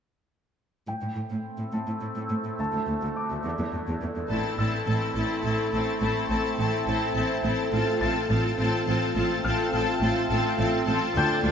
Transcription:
0.87 cello section A2, synth drone A3 C4 E4 A4, grand piano G5
1.01 cello section A2
1.16 cello section A2
1.30 cello section A2
1.58 cello section A2
1.73 cello section A2, grand piano A5
1.87 cello section A2
2.01 cello section A2
2.16 cello section A2
2.30 cello section A2
2.45 cello section A2
2.59 cello section D2, synth drone D4, grand piano A5
2.73 cello section D2
2.88 cello section D2
3.02 cello section D2
3.16 grand piano D6
3.31 cello section D2
3.45 cello section E2
3.59 cello section E2
3.73 cello section E2
3.88 cello section E2
4.02 cello section E2
4.16 cello section E2
4.30 double bass section A1, cello section A2, synth drone A3 C4 E4 A4, viola section C4 E4, violin section A4 A5
4.58 double bass section A1, cello section A2, viola section C4 E4, violin section A4 A5, grand piano E6
4.85 double bass section A1, cello section A2, viola section C4 E4, violin section A4 A5
5.13 double bass section A1, cello section A2, viola section C4 E4, violin section A4 A5
5.42 double bass section A1, cello section A2, viola section C4 E4, violin section A4 A5
5.72 double bass section A1, cello section A2, viola section C4 E4, violin section A4 A5
6.00 double bass section A1, cello section A2, viola section C4 E4, violin section A4 A5
6.29 double bass section A1, cello section A2, viola section C4 E4, violin section A4 A5
6.58 double bass section A1, cello section A2, viola section C4 E4, violin section A4 A5
6.86 double bass section A1, cello section A2, viola section C4 E4, violin section A4 A5
7.14 double bass section A1, cello section A2, viola section C4 E4, violin section A4 A5
7.44 double bass section A1, cello section A2, viola section C4 E4, violin section A4 A5
7.72 double bass section A1, cello section A2, synth drone A3 C4 F4 A4, viola section C4 F4, violin section A4 A5
8.01 double bass section A1, cello section A2, viola section C4 F4, violin section A4 A5, grand piano A6
8.29 double bass section A1, cello section A2, viola section C4 F4, violin section A4 A5
8.58 double bass section A1, cello section A2, viola section C4 F4, violin section A4 A5
8.86 double bass section A1, cello section A2, viola section C4 F4, violin section A4 A5
9.15 double bass section A1, cello section A2, viola section C4 F4, violin section A4 A5
9.44 double bass section A1, cello section A2, viola section C4 F4, violin section A4 A5, grand piano F6
9.73 double bass section A1, cello section A2, viola section C4 F4, violin section A4 A5
10.01 double bass section A1, cello section A2, viola section C4 F4, violin section A4 A5
10.29 double bass section A1, cello section A2, viola section C4 F4, violin section A4 A5
10.58 double bass section A1, cello section A2, viola section C4 F4, violin section A4 A5
10.85 double bass section A1, cello section A2, viola section C4 F4, violin section A4 A5
11.15 cello section D2, double bass section D2, synth drone A3 D4 F4 A4, viola section D4 F4, violin section A4 A5, grand piano G5 G6
11.44 cello section D2, double bass section D2, viola section D4 F4, violin section A4 A5

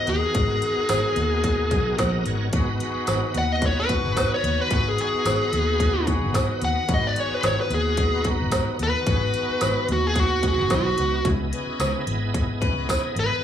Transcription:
Already playing: tonewheel organ B3 D#4 F#4 A#4
0.07 fingered electric bass D#2, lead electric guitar G#4, closed hi-hat
0.23 muted fingered electric bass stroke
0.35 fingered electric bass G#1, kick, closed hi-hat
0.62 closed hi-hat
0.77 muted fingered electric bass stroke
0.89 fingered electric bass G#1, snare, closed hi-hat, tambourine
1.16 fingered electric bass D#2, closed hi-hat
1.44 kick, closed hi-hat
1.70 fingered electric bass B1, tonewheel organ G#5, kick, closed hi-hat
1.98 fingered electric bass A#1, tonewheel organ F#5, kick, snare, closed hi-hat, tambourine
2.13 tonewheel organ D#5
2.25 fingered electric bass G#1, tonewheel organ C#5, closed hi-hat
2.52 fingered electric bass G#1, tonewheel organ B3 D#4 F#4 B4, horn section B3 F#4 G#4, kick, closed hi-hat
2.80 horn section B3 F#4 G#4, closed hi-hat
2.95 muted fingered electric bass stroke
3.07 fingered electric bass G#1, snare, closed hi-hat, tambourine
3.34 fingered electric bass D#2, lead electric guitar F#5, closed hi-hat
3.53 lead electric guitar D#5
3.62 kick, closed hi-hat
3.66 lead electric guitar C#5
3.80 lead electric guitar B4
3.89 horn section B3 F#4 G#4, kick, closed hi-hat
4.03 fingered electric bass G#1
4.17 kick, snare, closed hi-hat, tambourine
4.34 lead electric guitar C#5
4.44 fingered electric bass D#2, closed hi-hat
4.58 lead electric guitar B4, muted fingered electric bass stroke
4.70 fingered electric bass G#1, horn section B3 F#4 G#4, lead electric guitar B4, kick, closed hi-hat
4.89 lead electric guitar G#4
4.97 horn section B3 F#4 G#4, closed hi-hat
5.02 lead electric guitar G#4
5.13 muted fingered electric bass stroke
5.25 fingered electric bass G#1, snare, closed hi-hat, tambourine
5.53 fingered electric bass D#2, closed hi-hat
5.80 kick, closed hi-hat
6.06 horn section B3 F#4 G#4, kick, closed hi-hat
6.22 fingered electric bass G#1
6.34 kick, snare, closed hi-hat, tambourine
6.62 fingered electric bass D#2, lead electric guitar F#5, closed hi-hat
6.77 muted fingered electric bass stroke
6.88 fingered electric bass G#1, tonewheel organ B3 D#4 F#4 B4, horn section B3 F#4 G#4, kick, closed hi-hat
6.94 lead electric guitar D#5
7.07 lead electric guitar D5
7.14 horn section B3 F#4 G#4, closed hi-hat
7.20 lead electric guitar C#5
7.30 lead electric guitar B4, muted fingered electric bass stroke
7.43 fingered electric bass G#1, lead electric guitar C#5, snare, closed hi-hat, tambourine
7.61 lead electric guitar B4
7.70 fingered electric bass D#2, closed hi-hat
7.74 lead electric guitar G#4
7.97 kick, closed hi-hat
8.24 horn section B3 F#4 A#5, kick, closed hi-hat
8.40 fingered electric bass G#1
8.52 kick, snare, closed hi-hat, tambourine
8.79 fingered electric bass D#2, lead electric guitar B4, closed hi-hat
8.94 muted fingered electric bass stroke
9.06 fingered electric bass G#1, horn section B3 F#4 G#4, kick, closed hi-hat
9.34 horn section B3 F#4 G#4, closed hi-hat
9.49 muted fingered electric bass stroke
9.61 fingered electric bass G#1, snare, closed hi-hat, tambourine
9.88 fingered electric bass D#2, lead electric guitar F#4, closed hi-hat
10.07 lead electric guitar G#4
10.16 kick, closed hi-hat
10.20 lead electric guitar F#4
10.43 horn section B3 F#4 G#4, kick, closed hi-hat
10.48 lead electric guitar F#4
10.58 fingered electric bass G#1
10.70 fingered electric bass B1, kick, snare, closed hi-hat, tambourine
10.75 lead electric guitar F#4
10.98 fingered electric bass C#2, closed hi-hat
11.24 fingered electric bass C#2, tonewheel organ B3 E4 G#4 D#5, horn section C#4 E4 B4, kick, closed hi-hat
11.52 horn section C#4 B4, closed hi-hat
11.67 muted fingered electric bass stroke
11.79 fingered electric bass C#2, snare, closed hi-hat, tambourine
12.07 fingered electric bass G#1, closed hi-hat
12.34 kick, closed hi-hat
12.60 horn section C#4 B4, kick, closed hi-hat
12.76 fingered electric bass C#2
12.89 kick, snare, closed hi-hat, tambourine
13.16 fingered electric bass G#1, lead electric guitar B4, closed hi-hat
13.30 muted fingered electric bass stroke

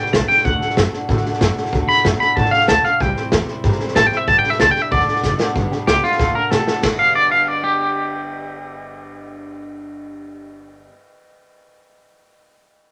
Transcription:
Already playing: steel-string acoustic guitar D4 G4, clean electric guitar G5
0.00 steel-string acoustic guitar G3 B3
0.06 snare
0.13 upright bass B1, steel-string acoustic guitar G3 B3 D4 G4, clean electric guitar A5, kick, snare, hi-hat pedal
0.28 steel-string acoustic guitar G3 B3 D4 G4, clean electric guitar G5, muted upright bass stroke, snare
0.37 snare
0.45 upright bass D2, steel-string acoustic guitar D3 A3 D4 F#4 A4, clean electric guitar F#5, kick, snare
0.61 steel-string acoustic guitar D4 F#4 A4, muted upright bass stroke, snare
0.70 snare
0.77 upright bass F#2, steel-string acoustic guitar A3 D4 F#4 A4, kick, snare, hi-hat pedal
0.93 steel-string acoustic guitar D4 F#4 A4, snare
1.09 upright bass A2, steel-string acoustic guitar D3 A3 D4 F#4 A4, kick, snare
1.17 snare
1.25 steel-string acoustic guitar D4 F#4 A4, muted upright bass stroke, snare
1.33 snare
1.41 upright bass F#2, steel-string acoustic guitar A3 D4 F#4 A4, kick, snare, hi-hat pedal
1.57 steel-string acoustic guitar D4 F#4 A4, snare
1.65 snare
1.73 upright bass D2, steel-string acoustic guitar D3 A3 D4 F#4 A4, kick, snare
1.89 steel-string acoustic guitar D4 F#4 A4, clean electric guitar B5, muted upright bass stroke, snare
1.97 snare
2.04 upright bass F#2, steel-string acoustic guitar A3 D4 F#4 A4, kick, snare, hi-hat pedal
2.20 steel-string acoustic guitar D4 F#4 A4, clean electric guitar B5, snare
2.36 upright bass A2, steel-string acoustic guitar D3 A3 D4 F#4 A4, clean electric guitar A5, kick, snare
2.45 snare
2.51 steel-string acoustic guitar F#4 A4, clean electric guitar F5, muted upright bass stroke, snare
2.56 steel-string acoustic guitar D4
2.61 snare
2.68 upright bass D2, steel-string acoustic guitar A3 D4 F#4 A4, clean electric guitar A5, kick, snare, hi-hat pedal
2.84 steel-string acoustic guitar F#4 A4, clean electric guitar F5, muted upright bass stroke, snare
2.88 steel-string acoustic guitar D4
3.00 upright bass C2, steel-string acoustic guitar C3 E3 G3 C4 E4 C5, clean electric guitar G5, kick, snare
3.16 steel-string acoustic guitar G3 C4 E4 C5, snare
3.32 upright bass E2, steel-string acoustic guitar G3 C4 E4, kick, snare, hi-hat pedal
3.36 steel-string acoustic guitar C5
3.48 steel-string acoustic guitar G3 C4 E4 C5, muted upright bass stroke, snare
3.64 upright bass G2, steel-string acoustic guitar C3 E3 G3 C4 E4 C5, kick, snare
3.71 snare
3.80 steel-string acoustic guitar G3 C4 E4 C5, muted upright bass stroke, snare
3.88 snare
3.96 upright bass A1, steel-string acoustic guitar G3 C4 E4 C5, clean electric guitar A5, kick, snare, hi-hat pedal
4.07 clean electric guitar G5
4.12 steel-string acoustic guitar G3 C4 E4 C5, muted upright bass stroke, snare
4.17 clean electric guitar E5
4.27 upright bass G1, steel-string acoustic guitar G2 D3 G3 D4 G4 B4, clean electric guitar A5, kick, snare
4.39 clean electric guitar G5
4.43 steel-string acoustic guitar G3 D4 G4 B4, muted upright bass stroke, snare
4.50 clean electric guitar E5, snare
4.60 upright bass C#2, steel-string acoustic guitar G3 D4 G4 B4, clean electric guitar A5, kick, snare, hi-hat pedal
4.71 steel-string acoustic guitar B4, clean electric guitar G5
4.76 steel-string acoustic guitar G3 D4 G4, snare
4.82 clean electric guitar E5
4.91 upright bass D2, steel-string acoustic guitar D3 A3 D4 F#4 A4, clean electric guitar D5, kick, snare
5.00 snare
5.07 steel-string acoustic guitar D4 F#4 A4, muted upright bass stroke, snare
5.16 snare
5.23 upright bass F#1, steel-string acoustic guitar A3 D4 F#4 A4, kick, snare, hi-hat pedal
5.39 steel-string acoustic guitar D4 F#4 A4, snare
5.55 upright bass G1, steel-string acoustic guitar G2 D3 G3 B3 D4 G4, kick, snare
5.71 steel-string acoustic guitar G3 B3 D4 G4, muted upright bass stroke, snare
5.87 upright bass C#2, steel-string acoustic guitar G3 B3 D4 G4, clean electric guitar G4, snare, hi-hat pedal
6.02 steel-string acoustic guitar G3 B3 D4 G4, clean electric guitar F4, muted upright bass stroke, snare
6.12 snare
6.18 upright bass D2, steel-string acoustic guitar D3 A3 D4 F#4 A4, kick, snare
6.34 steel-string acoustic guitar D4 F#4 A4, clean electric guitar A#4, muted upright bass stroke
6.50 upright bass C3, steel-string acoustic guitar A3 D4 F#4 A4, clean electric guitar A4, snare, hi-hat pedal
6.66 steel-string acoustic guitar D4 F#4 A4, muted upright bass stroke, snare
6.81 upright bass G1, steel-string acoustic guitar G2 D3 G3 B3, kick, snare, ride bell
6.85 steel-string acoustic guitar D4 B4
6.99 clean electric guitar F5
7.15 clean electric guitar D5
7.32 clean electric guitar F5
7.48 clean electric guitar D5
7.64 clean electric guitar G4

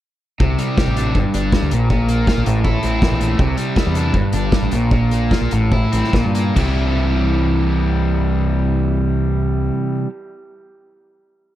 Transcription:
0.40 fingered electric bass C2, overdriven electric guitar C3, kick
0.58 overdriven electric guitar G3, closed hi-hat
0.77 overdriven electric guitar G4, kick, snare
0.88 fingered electric bass A1
0.97 overdriven electric guitar D4, closed hi-hat
1.15 fingered electric bass G1, overdriven electric guitar G2, kick
1.34 fingered electric bass G1, overdriven electric guitar D4, closed hi-hat
1.52 overdriven electric guitar G3, kick, snare
1.62 fingered electric bass D2
1.71 fingered electric bass A#1, overdriven electric guitar A#2, closed hi-hat
1.90 overdriven electric guitar A#2, kick
2.09 overdriven electric guitar A#3, closed hi-hat
2.27 overdriven electric guitar F4, kick, snare
2.38 fingered electric bass A#1
2.46 fingered electric bass A1, overdriven electric guitar A2, closed hi-hat
2.64 overdriven electric guitar E4, kick
2.83 fingered electric bass A1, overdriven electric guitar C4, closed hi-hat
3.01 overdriven electric guitar E3, kick, snare
3.12 fingered electric bass A#1
3.20 overdriven electric guitar A3, closed hi-hat
3.39 fingered electric bass C2, overdriven electric guitar C3, kick
3.57 overdriven electric guitar G3, closed hi-hat
3.76 overdriven electric guitar E4, kick, snare
3.87 fingered electric bass E2
3.95 overdriven electric guitar D4, closed hi-hat
4.14 fingered electric bass G1, overdriven electric guitar G2, kick
4.33 fingered electric bass G1, overdriven electric guitar D4, closed hi-hat
4.52 overdriven electric guitar G3, kick, snare
4.62 fingered electric bass A1
4.71 fingered electric bass A#1, overdriven electric guitar A#2, closed hi-hat
4.91 overdriven electric guitar A#2, kick
5.11 overdriven electric guitar A#3, closed hi-hat
5.31 overdriven electric guitar F4, kick, snare
5.41 fingered electric bass A#1
5.51 fingered electric bass A1, overdriven electric guitar A2, closed hi-hat
5.72 overdriven electric guitar E4, kick
5.92 fingered electric bass A1, overdriven electric guitar C4, closed hi-hat
6.04 snare
6.13 fingered electric bass A#1, overdriven electric guitar A#2, kick, snare
6.25 fingered electric bass G2
6.35 overdriven electric guitar A#3, closed hi-hat
6.54 fingered electric bass C2, overdriven electric guitar C3 E3 G3 E4, kick, crash
6.59 overdriven electric guitar G4

